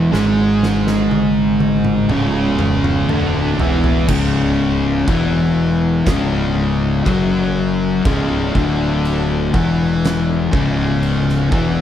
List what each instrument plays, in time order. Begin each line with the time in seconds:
Already playing: distorted electric guitar E2 E3
0.12 fingered electric bass G#1, distorted electric guitar G#2 G#3, snare
0.63 snare
0.87 snare
1.11 high tom
1.60 high tom
1.85 mid tom
2.09 fingered electric bass C#1, distorted electric guitar C#2 C#3, mid tom
2.59 mid tom
2.84 mid tom
3.09 fingered electric bass D1, distorted electric guitar D2 D3, mid tom
3.58 fingered electric bass E1, distorted electric guitar E2 E3, floor tom
3.84 floor tom
4.08 fingered electric bass C#1, distorted electric guitar C#2 C#3, kick, crash
5.07 fingered electric bass E1, distorted electric guitar E2 E3, kick, crash
6.06 fingered electric bass C#1, distorted electric guitar C#2 C#3, kick, snare, crash
7.06 fingered electric bass F#1, distorted electric guitar F#2 F#3, kick, crash
8.05 fingered electric bass C#1, distorted electric guitar C#2 C#3, kick, crash
8.55 fingered electric bass D1, distorted electric guitar D2 D3, kick
9.05 crash
9.54 fingered electric bass E1, distorted electric guitar E2 E3, kick
10.05 snare, crash
10.53 fingered electric bass C#1, distorted electric guitar C#2 C#3, kick
11.03 crash
11.29 snare
11.52 fingered electric bass E1, distorted electric guitar E2 E3, kick